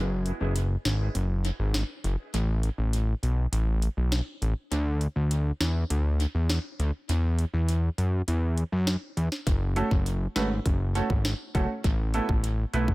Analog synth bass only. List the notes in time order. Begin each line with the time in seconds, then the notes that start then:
Already playing: F#1
0.41 F#1
0.85 G#1
1.15 F#1
1.59 G#1
2.04 F#1
2.34 A1
2.78 A1
3.23 B1
3.52 A1
3.97 B1
4.42 A1
4.71 D2
5.16 D2
5.60 E2
5.90 D2
6.35 E2
6.79 D2
7.09 E2
7.54 E2
7.98 F#2
8.28 E2
8.72 F#2
9.17 E2
9.47 F#1
9.91 F#1
10.36 G#1
10.66 F#1
11.10 G#1
11.55 F#1
11.84 A1
12.29 A1
12.73 B1